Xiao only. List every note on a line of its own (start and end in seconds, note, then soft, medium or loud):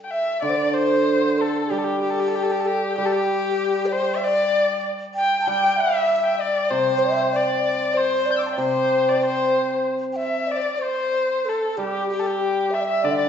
0.11 0.44 E5 medium
0.43 0.51 D5 medium
0.49 0.58 C5 medium
0.56 0.75 D5 medium
0.74 1.39 C5 loud
1.38 1.68 A4 medium
1.69 2.00 G4 medium
2.01 2.67 G4 medium
2.65 2.98 A4 medium
2.96 3.88 G4 medium
3.86 3.93 D5 medium
3.92 4.23 C5 medium
4.23 4.86 D5 loud
5.14 5.38 G5 medium
5.41 5.49 A5 medium
5.48 5.72 G5 loud
5.72 5.78 G5 medium
5.77 6.35 E5 loud
6.35 6.64 D5 medium
6.35 6.40 E5 medium
6.64 6.71 D5 medium
6.69 7.00 C5 loud
6.99 7.31 E5 medium
7.31 7.62 D5 medium
7.62 7.96 D5 medium
7.94 8.27 C5 medium
8.26 8.56 D5 medium
8.56 9.17 C5 medium
9.19 9.86 C5 medium
10.12 10.48 E5 medium
10.12 10.18 G5 medium
10.47 10.58 D5 medium
10.57 10.63 C5 medium
10.62 10.75 D5 medium
10.75 11.47 C5 medium
10.75 10.80 D5 medium
11.45 11.79 A4 medium
11.77 12.09 G4 medium
12.09 12.72 G4 medium
12.71 12.82 E5 medium
12.81 12.86 D5 medium
12.81 13.04 E5 medium
13.02 13.13 D5 medium
13.11 13.18 E5 medium
13.16 13.29 D5 loud